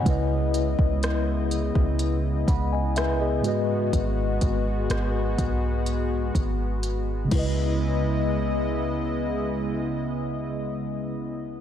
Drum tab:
CC |----------------|--------------x-|----------------|
HH |x-x-x-x-x-x-x-x-|x-x-x-x-x-x-x---|----------------|
SD |----r-------r---|----r-----------|----------------|
BD |o--o---o--o-----|o-o---o---o---o-|----------------|